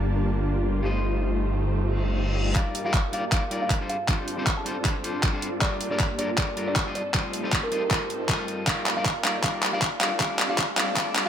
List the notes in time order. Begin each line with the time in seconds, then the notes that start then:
Already playing: G1 G3 A#3 D4 F4 G4 A4 A#4 D5 A5
0.82 G1 G3 A3 D#4 F4 G4 C5 D#5
1.79 reverse cymbal
2.55 G2 G3 A#3 D#4 F4 G4 A#4 D5 F5, kick, clap, closed hi-hat
2.75 closed hi-hat
2.84 G3 D#4 F4 A#4 D5 F5
2.94 kick, clap, closed hi-hat
3.12 G3 D#4 F4 A#4 D5 F5, closed hi-hat
3.31 G3 D#4 F4 A#4 D5 F5, kick, clap, closed hi-hat
3.50 G3 A#3 D#4 F4 G4 A#4 D5, closed hi-hat
3.62 A#3 D#4 F4 G4 C5 F5
3.70 kick, clap, closed hi-hat
3.80 G3 D4 F4 A4 C5
3.89 G3 C4 A4 F5, closed hi-hat
4.08 G3 C4 D4 F4 A4 C5 D5, kick, clap, closed hi-hat
4.28 closed hi-hat
4.37 G3 D4 F4 A4 C5
4.47 kick, clap, closed hi-hat
4.57 A5
4.65 G3 D4 F4 A4 C5, closed hi-hat
4.84 G3 D4 F4 A4 C5, kick, clap, closed hi-hat
5.03 G3 D4 F4 A4 C5, closed hi-hat
5.23 kick, clap, closed hi-hat
5.33 G3 D4 F4 A4 C5
5.42 C4 D4 F4 A4 D5, closed hi-hat
5.61 G3 A#3 D4 F4 G4 A4 A#4 D5, kick, clap, closed hi-hat
5.81 closed hi-hat
5.90 G3 D4 F4 A4 A#4 D5
6.00 kick, clap, closed hi-hat
6.18 G3 D4 F4 A4 A#4 D5, closed hi-hat
6.37 G3 D4 F4 A4 A#4 D5, kick, clap, closed hi-hat
6.56 G3 A#3 D4 F4 G4 A4 A#4 D5, closed hi-hat
6.68 A#3 D4 F4 G4 C5 D5
6.76 kick, clap, closed hi-hat
6.86 G3 F4 A4 C5 D#5
6.95 C4 D#4 D5, closed hi-hat
7.14 G3 A3 D#4 F4 G4 A4 C5 D#5, kick, clap, closed hi-hat
7.33 closed hi-hat
7.43 G3 F4 A4 C5 D#5
7.53 kick, clap, closed hi-hat
7.63 A#4
7.71 G3 F4 A4 C5 D#5, closed hi-hat
7.90 G3 F4 A4 C5 D#5, kick, clap, closed hi-hat
8.10 closed hi-hat
8.28 G3 F4 A4 C5 D#5, kick, clap, closed hi-hat
8.48 closed hi-hat
8.67 G3 A#3 D#4 F4 G4 A#4 D5 F5, kick, clap, closed hi-hat
8.86 clap, closed hi-hat
8.96 G3 D#4 F4 A#4 D5 F5
9.06 kick, clap, closed hi-hat
9.24 G3 D#4 F4 A#4 D5 F5, clap, closed hi-hat
9.43 G3 A#3 D#4 F4 G4 A#4 D5 F5, kick, clap, closed hi-hat
9.63 clap, closed hi-hat
9.72 G3 D#4 F4 A#4 D5 F5
9.82 kick, clap, closed hi-hat
10.00 G2 G3 C4 D4 F4 A4 D5 F5, clap, closed hi-hat
10.19 G3 A3 D4 F4 G4 A4 D5 F5, kick, clap, closed hi-hat
10.39 clap, closed hi-hat
10.49 G3 D4 F4 A4 D5 F5
10.58 kick, clap, closed hi-hat
10.76 G3 D4 F4 A4 D5 F5, clap, closed hi-hat
10.96 G3 A3 D4 F4 G4 A4 D5 F5, kick, clap, closed hi-hat
11.16 clap, closed hi-hat
11.25 G3